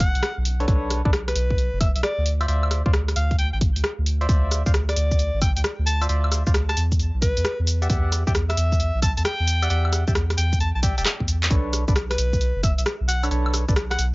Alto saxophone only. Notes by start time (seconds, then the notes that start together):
0.00 F#5
1.28 B4
1.81 E5
1.96 E5
2.03 D5
3.16 F5
3.39 G5
3.53 G5
4.89 D5
5.42 G5
5.56 G5
5.86 A5
6.69 A5
7.22 B4
8.50 E5
9.02 A5
9.17 A5
9.25 G5
10.38 G5
10.60 A5
10.75 A5
12.10 B4
12.63 E5
12.78 E5
13.08 F#5
13.91 F#5